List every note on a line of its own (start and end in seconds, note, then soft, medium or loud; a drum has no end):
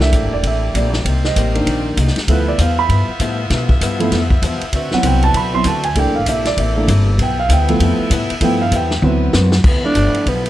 0.00 0.12 C2 medium
0.00 1.01 E3 soft
0.00 1.01 A3 soft
0.00 1.02 A#3 soft
0.00 1.02 D4 soft
0.00 1.04 E4 medium
0.00 1.01 G4 medium
0.00 1.04 D5 medium
0.00 0.30 E5 medium
0.00 snare medium
0.12 0.22 A#1 medium
0.12 0.33 C3 medium
0.12 0.34 A#3 medium
0.12 0.34 E4 medium
0.12 0.34 A4 medium
0.12 kick soft
0.12 hi-hat pedal medium
0.12 ride medium
0.22 0.32 G1 soft
0.32 0.42 E1 medium
0.32 0.44 D5 medium
0.43 0.73 A1 medium
0.43 0.64 C3 soft
0.43 0.65 A#3 soft
0.43 0.65 E4 soft
0.43 0.74 E5 medium
0.43 kick soft
0.43 ride medium
0.47 0.66 A4 medium
0.74 1.04 A#1 medium
0.74 0.95 C3 medium
0.74 0.95 A#3 medium
0.74 0.96 E4 medium
0.74 0.96 A4 medium
0.74 1.22 D5 medium
0.74 kick soft
0.74 hi-hat pedal medium
0.74 ride medium
0.93 snare soft
1.03 1.35 C2 medium
1.03 1.25 C3 soft
1.03 1.26 G3 soft
1.03 2.10 C4 medium
1.03 2.10 G4 medium
1.03 2.10 A#4 medium
1.03 2.10 C5 medium
1.03 kick soft
1.03 ride medium
1.07 1.26 A#3 medium
1.07 1.27 D#4 soft
1.24 1.53 D#5 medium
1.24 snare soft
1.36 1.66 A1 medium
1.36 1.56 C3 medium
1.36 1.56 G3 medium
1.36 1.57 A#3 medium
1.36 1.57 D#4 medium
1.36 kick soft
1.36 hi-hat pedal soft
1.36 ride medium
1.55 1.95 D#3 medium
1.55 1.96 A#3 soft
1.55 1.96 D4 medium
1.55 ride soft
1.66 1.96 A#1 medium
1.66 1.86 C3 medium
1.66 1.87 G3 medium
1.66 1.88 A#3 medium
1.66 1.88 D#4 medium
1.66 kick soft
1.66 ride medium
1.97 2.15 C2 loud
1.97 2.17 C3 medium
1.97 2.18 G3 medium
1.97 2.18 A#3 medium
1.97 2.18 D#4 medium
1.97 kick soft
1.97 hi-hat pedal medium
1.97 ride medium
2.07 snare soft
2.16 muted upright bass stroke soft
2.16 snare soft
2.16 ride medium
2.27 2.57 D2 medium
2.27 2.48 G2 soft
2.27 2.50 F3 soft
2.27 2.48 F3 soft
2.27 2.51 A3 soft
2.27 4.71 B3 medium
2.27 2.51 B3 soft
2.27 2.49 B3 medium
2.27 2.51 E4 soft
2.27 2.50 E4 soft
2.27 4.71 F4 medium
2.27 4.71 A4 medium
2.27 4.71 E5 medium
2.27 kick soft
2.27 ride medium
2.31 2.48 B4 medium
2.48 2.59 D5 medium
2.58 2.88 E2 loud
2.58 2.79 G2 medium
2.58 2.79 F3 medium
2.58 2.79 B3 medium
2.58 2.80 E4 medium
2.58 2.78 F5 medium
2.58 kick soft
2.58 hi-hat pedal medium
2.58 ride medium
2.79 3.18 B5 loud
2.89 3.07 G2 medium
2.89 3.09 G2 soft
2.89 3.10 F3 medium
2.89 3.10 B3 medium
2.89 3.11 E4 medium
2.89 kick soft
2.89 ride medium
3.08 muted upright bass stroke soft
3.19 3.40 G2 medium
3.19 3.49 A2 loud
3.19 3.40 F3 medium
3.19 3.41 B3 medium
3.19 3.41 E4 medium
3.19 kick soft
3.19 hi-hat pedal medium
3.19 ride medium
3.50 3.71 G2 medium
3.50 3.80 B2 medium
3.50 3.71 F3 medium
3.50 3.72 B3 soft
3.50 3.72 E4 medium
3.50 kick soft
3.50 snare soft
3.50 ride medium
3.69 kick medium
3.81 4.01 G2 medium
3.81 4.11 G2 medium
3.81 4.01 F3 medium
3.81 4.02 B3 medium
3.81 4.02 E4 medium
3.81 kick soft
3.81 hi-hat pedal medium
3.81 ride medium
3.99 4.18 F3 soft
3.99 4.18 A3 soft
3.99 4.18 B3 soft
3.99 4.19 E4 medium
3.99 ride soft
4.12 4.41 F2 medium
4.12 4.32 G2 medium
4.12 4.33 F3 medium
4.12 4.33 B3 medium
4.12 4.34 E4 medium
4.12 kick soft
4.12 snare soft
4.12 ride medium
4.30 kick medium
4.42 4.60 E2 loud
4.42 4.63 G2 medium
4.42 4.63 F3 medium
4.42 4.64 B3 medium
4.42 4.64 E4 medium
4.42 kick soft
4.42 hi-hat pedal medium
4.42 ride medium
4.61 muted upright bass stroke soft
4.61 ride soft
4.72 4.90 D2 medium
4.72 4.93 D3 soft
4.72 4.94 C4 soft
4.72 5.94 D4 medium
4.72 5.94 F#4 medium
4.72 4.94 F#4 soft
4.72 5.94 B4 medium
4.72 5.94 E5 medium
4.72 4.93 E5 medium
4.72 kick soft
4.72 ride medium
4.76 4.95 B4 medium
4.91 5.33 F#3 medium
4.91 5.33 B3 soft
4.91 5.33 C4 soft
4.91 5.33 E4 medium
4.91 5.05 F#5 medium
4.91 muted upright bass stroke soft
4.91 snare soft
5.03 5.33 C2 medium
5.03 5.24 D3 medium
5.03 5.24 C4 medium
5.03 5.25 F#4 medium
5.03 5.25 B4 medium
5.03 kick soft
5.03 hi-hat pedal medium
5.03 ride medium
5.07 5.24 G5 medium
5.22 5.35 A5 medium
5.22 ride soft
5.34 5.64 B1 medium
5.34 5.55 D3 medium
5.34 5.55 C4 medium
5.34 5.56 F#4 soft
5.34 5.56 B4 medium
5.34 5.54 B5 medium
5.34 kick soft
5.34 ride medium
5.53 5.64 F#3 soft
5.53 5.64 B3 soft
5.53 5.64 C4 soft
5.53 5.65 E4 medium
5.53 5.66 C6 medium
5.64 5.95 D2 medium
5.64 5.85 D3 medium
5.64 5.86 C4 medium
5.64 5.86 F#4 medium
5.64 5.86 B4 medium
5.64 5.85 A5 medium
5.64 kick soft
5.64 hi-hat pedal medium
5.64 ride medium
5.83 5.96 G#5 medium
5.83 ride medium
5.95 6.06 C2 medium
5.95 6.16 C3 soft
5.95 6.19 E3 soft
5.95 6.19 A3 soft
5.95 7.17 A#3 medium
5.95 6.19 A#3 soft
5.95 6.17 A#3 medium
5.95 6.19 D4 soft
5.95 7.17 E4 medium
5.95 6.17 E4 soft
5.95 9.00 A4 medium
5.95 7.17 D5 medium
5.95 6.16 G5 medium
5.95 kick soft
5.95 ride medium
5.99 6.18 A4 medium
6.06 6.16 A#1 medium
6.16 6.25 G1 medium
6.16 6.27 F5 medium
6.26 6.56 A#1 medium
6.26 6.47 C3 medium
6.26 6.47 A#3 medium
6.26 6.48 E4 medium
6.26 6.48 A4 medium
6.26 6.46 E5 medium
6.26 kick soft
6.26 hi-hat pedal medium
6.26 ride medium
6.45 6.58 D5 medium
6.45 snare soft
6.45 ride medium
6.57 6.87 A1 medium
6.57 6.77 C3 soft
6.57 6.78 A#3 medium
6.57 6.79 E4 medium
6.57 6.79 A4 medium
6.57 6.87 E5 medium
6.57 kick soft
6.57 ride medium
6.77 6.87 E3 soft
6.77 6.87 A3 soft
6.77 6.88 A#3 soft
6.77 6.88 D4 soft
6.88 7.18 G1 loud
6.88 7.08 C3 medium
6.88 7.09 A#3 medium
6.88 7.09 E4 medium
6.88 7.09 A4 medium
6.88 kick soft
6.88 hi-hat pedal medium
6.88 ride medium
7.18 7.48 B1 medium
7.18 7.38 G2 soft
7.18 7.39 F3 soft
7.18 9.01 B3 medium
7.18 7.40 B3 medium
7.18 9.01 E4 medium
7.18 7.40 E4 soft
7.18 9.49 E5 medium
7.18 kick soft
7.18 ride medium
7.23 7.39 G5 medium
7.40 7.50 F5 medium
7.49 7.79 D2 medium
7.49 7.69 G2 medium
7.49 7.70 F3 medium
7.49 7.70 B3 medium
7.49 7.70 E4 medium
7.49 kick soft
7.49 hi-hat pedal medium
7.49 ride medium
7.53 7.98 G5 medium
7.68 8.09 F3 medium
7.68 8.10 A3 soft
7.68 8.10 B3 soft
7.68 8.10 E4 medium
7.68 ride medium
7.79 7.98 F2 medium
7.79 8.00 G2 soft
7.79 8.00 F3 medium
7.79 8.01 B3 medium
7.79 8.01 E4 soft
7.79 kick soft
7.79 ride medium
7.99 muted upright bass stroke soft
8.10 8.31 G2 medium
8.10 8.28 A2 loud
8.10 8.31 F3 medium
8.10 8.32 B3 medium
8.10 8.32 E4 medium
8.10 kick soft
8.10 hi-hat pedal medium
8.10 ride medium
8.30 muted upright bass stroke soft
8.30 ride medium
8.41 8.61 G2 soft
8.41 8.71 G2 medium
8.41 8.62 F3 medium
8.41 8.64 F3 soft
8.41 8.59 A3 soft
8.41 8.65 B3 soft
8.41 8.62 B3 medium
8.41 8.65 E4 medium
8.41 8.63 E4 medium
8.41 8.61 G5 medium
8.41 kick soft
8.41 ride medium
8.62 8.73 F5 medium
8.72 9.02 E2 medium
8.72 8.92 G2 medium
8.72 8.93 F3 medium
8.72 8.93 B3 medium
8.72 8.93 E4 medium
8.72 kick soft
8.72 hi-hat pedal medium
8.72 ride medium
8.76 9.03 G5 medium
8.91 snare soft
9.02 9.33 D2 medium
9.02 9.23 D3 soft
9.02 9.50 F#3 soft
9.02 9.50 B3 soft
9.02 9.23 C4 soft
9.02 9.51 C4 soft
9.02 9.51 E4 soft
9.02 9.49 F#4 medium
9.02 9.24 F#4 medium
9.02 9.49 B4 medium
9.02 9.24 B4 medium
9.02 high tom medium
9.33 9.64 F#2 loud
9.33 9.54 D3 medium
9.33 9.54 C4 medium
9.33 9.55 F#4 medium
9.33 9.55 B4 medium
9.33 snare medium
9.33 hi-hat pedal medium
9.52 snare medium
9.64 9.82 D2 medium
9.64 9.85 G2 soft
9.64 10.50 F3 medium
9.64 9.85 F3 soft
9.64 10.50 B3 medium
9.64 9.86 B3 medium
9.64 9.84 B3 medium
9.64 10.50 E4 medium
9.64 9.86 E4 medium
9.64 10.50 A4 medium
9.64 kick medium
9.64 crash medium
9.83 10.24 F3 medium
9.83 10.24 A3 medium
9.83 10.24 B3 medium
9.83 10.24 D4 medium
9.83 10.30 D4 loud
9.83 10.24 E4 medium
9.83 muted upright bass stroke soft
9.95 10.13 G1 medium
9.95 10.16 G2 medium
9.95 10.16 F3 medium
9.95 10.17 B3 medium
9.95 10.17 E4 medium
9.95 kick soft
9.95 hi-hat pedal medium
9.95 ride medium
10.14 ride soft
10.26 10.50 B1 medium
10.26 10.46 G2 soft
10.26 10.47 F3 soft
10.26 10.47 B3 medium
10.26 10.50 B3 medium
10.26 10.48 E4 medium
10.26 kick soft
10.26 ride medium
10.46 ride medium